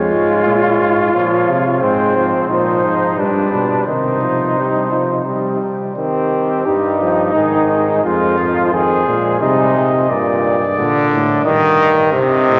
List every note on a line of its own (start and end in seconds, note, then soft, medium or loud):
0.00 0.11 F2 medium
0.00 1.11 G#3 medium
0.00 1.77 F4 medium
0.00 0.44 C#5 medium
0.13 0.48 G#2 medium
0.45 0.79 A#2 medium
0.45 0.97 C#5 medium
0.80 1.13 G#2 medium
1.13 1.47 A#2 medium
1.13 1.65 F3 medium
1.13 1.79 C#5 medium
1.48 1.81 C3 medium
1.80 2.33 G#2 medium
1.80 2.17 G#3 medium
1.80 2.47 C4 medium
1.80 2.47 C5 medium
2.15 2.48 F3 medium
2.48 2.83 A#2 medium
2.48 3.16 F3 medium
2.48 3.20 D#4 medium
2.48 3.15 C5 medium
2.84 3.20 G#2 medium
3.17 3.52 G2 medium
3.17 3.85 G3 medium
3.17 3.86 D4 medium
3.17 3.85 B4 medium
3.53 3.87 B2 medium
3.87 5.59 C3 medium
3.87 4.20 D#3 medium
3.87 5.58 D#4 medium
3.87 5.58 C5 medium
4.21 4.58 F3 medium
4.56 4.90 G3 medium
4.91 5.25 F3 medium
5.25 5.95 G3 medium
5.96 6.67 D#3 medium
5.96 6.67 C4 medium
5.96 7.31 G4 medium
6.66 7.32 G2 medium
6.66 7.00 G3 medium
6.66 8.03 D#4 medium
7.01 7.34 F3 medium
7.34 8.03 G#2 medium
7.34 8.02 D#3 medium
7.34 8.03 G#4 medium
8.03 9.05 F2 medium
8.03 8.37 G#3 medium
8.03 8.71 F4 medium
8.03 8.72 C5 medium
8.38 8.74 F3 medium
8.72 9.05 D#3 medium
8.72 9.40 G#4 medium
8.72 9.43 C5 medium
9.05 9.41 A#2 medium
9.05 9.41 G#3 medium
9.40 10.08 C3 loud
9.40 9.75 G3 medium
9.40 10.08 D#4 medium
9.40 10.11 D#5 medium
9.75 10.09 C3 medium
10.09 10.80 G2 medium
10.09 10.60 A#2 medium
10.09 11.45 D5 medium
10.77 11.12 A#2 medium
10.77 11.44 D3 loud
11.13 11.46 A2 medium
11.45 12.12 G2 medium
11.45 12.12 D#3 loud
11.45 11.97 D#5 medium
12.12 12.60 C3 loud
12.12 12.48 C3 medium
12.12 12.60 D#5 medium
12.48 12.60 A2 medium